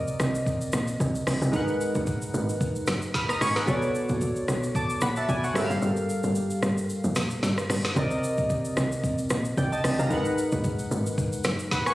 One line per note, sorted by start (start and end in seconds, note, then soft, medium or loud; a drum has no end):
0.00 0.15 A#1 medium
0.00 1.49 C3 medium
0.00 1.49 C4 medium
0.00 1.50 A#4 medium
0.00 1.50 D5 medium
0.00 1.51 D#5 medium
0.08 shaker medium
0.20 0.67 C2 medium
0.20 cross-stick loud
0.20 shaker medium
0.35 shaker medium
0.46 kick loud
0.46 shaker medium
0.61 shaker medium
0.73 0.97 A#1 medium
0.73 cross-stick loud
0.73 shaker loud
0.88 shaker medium
1.00 1.24 C2 loud
1.00 kick medium
1.00 shaker medium
1.15 shaker medium
1.27 1.40 C2 medium
1.27 cross-stick loud
1.27 open hi-hat medium
1.27 shaker loud
1.42 1.52 C2 loud
1.42 shaker medium
1.52 1.90 G#1 loud
1.52 3.10 G#3 medium
1.52 3.11 D#4 medium
1.52 3.11 A#4 medium
1.52 3.12 B4 medium
1.52 kick loud
1.52 shaker medium
1.56 3.12 F#5 medium
1.68 shaker soft
1.81 shaker loud
1.95 2.29 G#1 loud
1.95 kick medium
1.95 shaker medium
2.07 kick medium
2.07 shaker medium
2.22 shaker medium
2.34 2.81 G#1 loud
2.34 shaker medium
2.49 shaker medium
2.61 kick loud
2.61 shaker medium
2.76 shaker medium
2.87 3.35 F#1 medium
2.87 cross-stick loud
2.87 snare medium
2.87 shaker loud
3.02 shaker medium
3.14 3.29 B5 medium
3.14 3.29 F6 medium
3.14 kick medium
3.14 snare medium
3.14 shaker medium
3.29 3.41 A#5 medium
3.29 3.41 D#6 medium
3.29 cross-stick loud
3.29 shaker medium
3.41 3.65 G#1 loud
3.41 3.56 G#5 medium
3.41 3.55 C#6 medium
3.41 cross-stick loud
3.41 open hi-hat medium
3.41 shaker loud
3.56 3.82 F#5 medium
3.56 3.81 B5 medium
3.56 cross-stick medium
3.56 snare medium
3.56 shaker medium
3.66 4.04 B1 loud
3.66 5.51 B3 medium
3.66 5.51 F#4 medium
3.66 5.52 A4 medium
3.66 4.74 C#5 medium
3.66 kick loud
3.66 shaker medium
3.71 4.74 D5 medium
3.82 shaker soft
3.95 shaker loud
4.09 4.44 A#1 medium
4.09 kick medium
4.09 shaker medium
4.21 kick medium
4.21 shaker medium
4.36 shaker medium
4.48 4.95 B1 loud
4.48 cross-stick medium
4.48 shaker medium
4.63 shaker medium
4.75 5.01 A5 medium
4.75 5.01 D6 medium
4.75 kick loud
4.75 shaker medium
4.90 shaker medium
5.01 5.25 A#1 medium
5.01 5.16 F#5 medium
5.01 5.16 B5 medium
5.01 cross-stick loud
5.01 shaker loud
5.16 5.29 E5 medium
5.16 5.28 A5 medium
5.16 shaker medium
5.29 5.52 B1 loud
5.29 5.43 D5 medium
5.29 5.43 G#5 medium
5.29 kick medium
5.29 shaker medium
5.44 5.69 C#5 medium
5.44 5.69 F#5 medium
5.44 shaker medium
5.53 5.68 G1 loud
5.53 7.65 G3 medium
5.53 7.65 G4 medium
5.53 7.66 A4 medium
5.53 7.66 A#4 medium
5.53 cross-stick loud
5.53 open hi-hat medium
5.53 shaker loud
5.58 5.64 E5 medium
5.64 7.70 F5 medium
5.70 5.81 G1 loud
5.70 shaker medium
5.82 6.19 G1 loud
5.82 shaker medium
5.97 shaker soft
6.09 shaker medium
6.23 6.58 G1 medium
6.23 shaker medium
6.35 shaker medium
6.50 shaker medium
6.63 6.86 G1 medium
6.63 cross-stick medium
6.63 shaker medium
6.78 shaker medium
6.90 shaker medium
7.04 7.15 F1 loud
7.04 shaker medium
7.16 7.29 A#1 medium
7.16 cross-stick loud
7.16 snare medium
7.16 shaker loud
7.31 shaker medium
7.43 7.56 G1 loud
7.43 snare medium
7.43 shaker medium
7.58 cross-stick medium
7.58 shaker medium
7.70 7.83 G1 loud
7.70 cross-stick loud
7.70 open hi-hat medium
7.70 shaker loud
7.85 cross-stick medium
7.85 snare medium
7.85 shaker medium
7.95 8.40 C2 loud
7.95 10.06 C3 medium
7.95 10.06 C4 medium
7.95 10.07 A#4 medium
7.95 9.55 D5 medium
7.95 kick loud
7.95 shaker medium
7.99 9.55 D#5 medium
8.11 shaker soft
8.24 shaker loud
8.38 8.72 A#1 medium
8.38 kick medium
8.38 shaker medium
8.50 kick medium
8.50 shaker medium
8.65 shaker medium
8.77 9.24 C2 medium
8.77 cross-stick loud
8.77 shaker medium
8.92 shaker medium
9.04 kick loud
9.04 shaker medium
9.18 shaker medium
9.30 9.54 A#1 medium
9.30 cross-stick loud
9.30 shaker loud
9.45 shaker medium
9.57 9.81 C2 loud
9.57 9.72 D5 medium
9.57 9.71 G5 medium
9.57 kick medium
9.57 shaker medium
9.72 9.98 D#5 medium
9.72 9.98 A5 medium
9.72 shaker medium
9.84 9.97 C2 loud
9.84 cross-stick loud
9.84 open hi-hat medium
9.84 shaker loud
9.99 10.09 C2 loud
9.99 10.25 F5 medium
9.99 10.24 A#5 medium
9.99 shaker medium
10.09 10.47 G#1 loud
10.09 11.94 G#3 medium
10.09 11.94 D#4 medium
10.09 11.94 A#4 medium
10.09 11.94 B4 medium
10.09 kick loud
10.09 shaker medium
10.13 11.70 F#5 medium
10.25 shaker medium
10.38 shaker loud
10.52 10.87 G#1 medium
10.52 kick medium
10.52 shaker medium
10.64 kick loud
10.64 shaker medium
10.79 shaker medium
10.91 11.38 G#1 loud
10.91 shaker medium
11.06 shaker medium
11.18 kick loud
11.18 shaker medium
11.33 shaker medium
11.44 11.92 F#1 medium
11.44 cross-stick loud
11.44 snare medium
11.44 shaker loud
11.59 shaker medium
11.71 11.86 F#5 medium
11.71 11.86 B5 medium
11.71 kick medium
11.71 snare medium
11.71 shaker medium
11.86 11.94 G#5 medium
11.86 11.94 C#6 medium
11.86 cross-stick loud
11.86 shaker medium